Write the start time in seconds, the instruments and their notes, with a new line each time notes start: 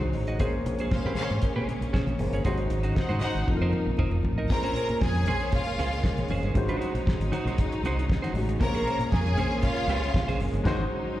Already playing: fingered electric bass C2, string section C#3 F#3 G#3 D#4, grand piano G#3 D#4 F#4 C5
0.01 muted clean electric guitar stroke, muted conga, low conga
0.13 fingered electric bass A1, muted clean electric guitar stroke, open hi-hat, low conga
0.27 clean electric guitar D#4 F#4 D#5, closed hi-hat
0.39 fingered electric bass A#1, string section C#3 A#3 C#4, grand piano A#3 G#4 C5 C#5, clean electric guitar C#4 G#4 C5, kick, closed hi-hat
0.53 muted clean electric guitar stroke, muted conga
0.66 fingered electric bass A#1, muted clean electric guitar stroke, closed hi-hat
0.79 clean electric guitar C#4 G#4 C5, closed hi-hat
0.92 string section C#4 C5 F5, muted clean electric guitar stroke, kick, snare, muted conga, high conga
1.05 fingered electric bass A#2, clean electric guitar C#4 G#4 C5, muted conga
1.15 string section C#4 C5 F5, clean electric guitar C#4, closed hi-hat, high conga, low conga
1.19 clean electric guitar G#4 C#5
1.31 fingered electric bass G#2, muted clean electric guitar stroke, closed hi-hat
1.42 muted clean electric guitar stroke, kick, closed hi-hat, muted conga
1.56 fingered electric bass A#2, clean electric guitar C#4 G#4 C5
1.68 muted clean electric guitar stroke, closed hi-hat, high conga
1.81 fingered electric bass A#1, muted clean electric guitar stroke, closed hi-hat
1.93 clean electric guitar C#4 G#4 C5, kick, snare, muted conga, high conga
2.06 fingered electric bass A#1, muted clean electric guitar stroke, closed hi-hat, muted conga, low conga
2.18 fingered electric bass F#1, grand piano A#3 G#4 C5 C#5, muted clean electric guitar stroke, open hi-hat, low conga
2.31 fingered electric bass G1, clean electric guitar C#4 G#4 C#5, closed hi-hat
2.44 fingered electric bass G#1, string section F#3 D#4, grand piano G#3 D#4 F#4 C5, clean electric guitar D#4 F#4 C5, kick, closed hi-hat
2.57 muted clean electric guitar stroke, closed hi-hat, muted conga
2.70 fingered electric bass G#1, muted clean electric guitar stroke, closed hi-hat
2.83 clean electric guitar D#4 F#4 C5, closed hi-hat
2.95 string section D#4 C5 F#5, muted clean electric guitar stroke, kick, snare, muted conga, high conga
3.09 fingered electric bass G#2, clean electric guitar D#4 F#4 C5, closed hi-hat
3.21 clean electric guitar D#4 F#4 D#5, string section D#4 C5 F#5, closed hi-hat, high conga, low conga
3.34 fingered electric bass G#1, muted clean electric guitar stroke, closed hi-hat
3.47 fingered electric bass F1, grand piano F3 C4 D#4 A4, string section F3 A#3, muted clean electric guitar stroke, kick, high tom, muted conga
3.56 grand piano A#4
3.60 fingered electric bass F2, clean electric guitar D#4 A#4 C5, muted conga
3.72 muted clean electric guitar stroke, mid tom, high conga
3.86 fingered electric bass A#1, muted clean electric guitar stroke
3.97 fingered electric bass F1, clean electric guitar D#4 A#4 C5, kick, mid tom, muted conga, high conga
4.11 muted clean electric guitar stroke, mid tom, muted conga, low conga
4.23 fingered electric bass A1, muted clean electric guitar stroke, floor tom, low conga
4.38 clean electric guitar D#4 A#4 D#5, floor tom
4.49 fingered electric bass A#1, grand piano A#2 G#3 C#4 C5, string section C#3 G#3 A#3 C#4 A#4 A#5, muted clean electric guitar stroke, kick, crash, muted conga
4.62 clean electric guitar C#4 G#4 C5, closed hi-hat, muted conga
4.76 clean electric guitar C#4 G#4 C5, closed hi-hat
4.89 fingered electric bass A#2, muted clean electric guitar stroke, closed hi-hat
5.01 fingered electric bass F2, string section G#4 G#5, muted clean electric guitar stroke, kick, snare, muted conga, high conga
5.14 muted clean electric guitar stroke, closed hi-hat, muted conga
5.26 fingered electric bass A#1, clean electric guitar C#4 G#4 C5, closed hi-hat, high conga, low conga
5.40 clean electric guitar C#4 G#4 C5, closed hi-hat
5.52 string section F4 F5, muted clean electric guitar stroke, kick, closed hi-hat, muted conga
5.66 muted clean electric guitar stroke, closed hi-hat, muted conga
5.78 fingered electric bass C#2, clean electric guitar C#4 G#4 C5, closed hi-hat, high conga
5.93 muted clean electric guitar stroke, closed hi-hat
6.03 muted clean electric guitar stroke, kick, snare, muted conga, high conga
6.17 fingered electric bass A#1, muted clean electric guitar stroke, closed hi-hat, muted conga, low conga
6.28 fingered electric bass F#1, clean electric guitar C#4 G#4 C5, open hi-hat, low conga
6.43 fingered electric bass G1, clean electric guitar C#4 G#4 C5, closed hi-hat
6.54 fingered electric bass G#1, string section F#3 D#4, grand piano G#3 D#4 F#4 C5, muted clean electric guitar stroke, kick, closed hi-hat
6.69 clean electric guitar D#4 F#4 C5, closed hi-hat
6.79 clean electric guitar D#4 F#4 C5, closed hi-hat
6.94 fingered electric bass A#1, muted clean electric guitar stroke, closed hi-hat
7.06 muted clean electric guitar stroke, kick, snare, muted conga, high conga
7.19 fingered electric bass G#1, muted clean electric guitar stroke, closed hi-hat, muted conga
7.32 clean electric guitar D#4 F#4 C5, closed hi-hat, high conga, low conga
7.45 fingered electric bass A#1, clean electric guitar D#4 F#4 C5, closed hi-hat
7.58 muted clean electric guitar stroke, kick, closed hi-hat
7.72 muted clean electric guitar stroke, closed hi-hat
7.83 fingered electric bass C2, clean electric guitar D#4 F#4 C5, closed hi-hat, high conga
7.98 muted clean electric guitar stroke, closed hi-hat
8.10 muted clean electric guitar stroke, kick, snare, high conga
8.22 clean electric guitar D#4 F#4 C5, snare, closed hi-hat, low conga
8.34 fingered electric bass A1, grand piano G#3 D#4 F#4 G#4, muted clean electric guitar stroke, open hi-hat, low conga
8.49 muted clean electric guitar stroke, closed hi-hat
8.60 fingered electric bass A#1, string section G#3 A#3 C#4 A#4 A#5, grand piano A#3 G#4 C5 C#5, muted clean electric guitar stroke, kick, closed hi-hat, muted conga
8.75 clean electric guitar C#4 G#4 C5, closed hi-hat, muted conga
8.86 clean electric guitar C#4 G#4 C5, closed hi-hat
8.99 fingered electric bass A#2, muted clean electric guitar stroke, closed hi-hat
9.11 fingered electric bass F2, string section G#4 G#5, muted clean electric guitar stroke, kick, snare, high conga
9.26 muted clean electric guitar stroke, closed hi-hat, muted conga
9.37 fingered electric bass A#1, clean electric guitar C#4 G#4 C5, closed hi-hat, high conga, low conga
9.52 clean electric guitar C#4 G#4 C5, closed hi-hat
9.62 string section F4 F5, muted clean electric guitar stroke, kick, closed hi-hat, muted conga
9.76 muted clean electric guitar stroke, closed hi-hat
9.87 fingered electric bass C#2, clean electric guitar C#4 G#4 C5, closed hi-hat, high conga
10.02 muted clean electric guitar stroke, closed hi-hat
10.14 muted clean electric guitar stroke, kick, snare, high conga
10.27 fingered electric bass A#1, clean electric guitar C#4 G#4 C5, snare, closed hi-hat, muted conga, low conga
10.39 fingered electric bass F#1, muted clean electric guitar stroke, open hi-hat, low conga
10.52 fingered electric bass G1, muted clean electric guitar stroke, closed hi-hat
10.64 fingered electric bass G#1, string section F#3 D#4, grand piano G#3 D#4 F#4 C5, clean electric guitar C5, kick, snare, crash
10.68 clean electric guitar D#4 F#4